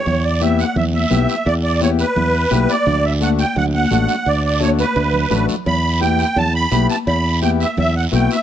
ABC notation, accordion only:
X:1
M:4/4
L:1/8
Q:1/4=171
K:Edor
V:1 name="Accordion"
c d e f e e3 | d d c B4 d- | d e f g f f3 | d d c B4 z |
b2 g2 a b2 a | b2 g e e f g e |]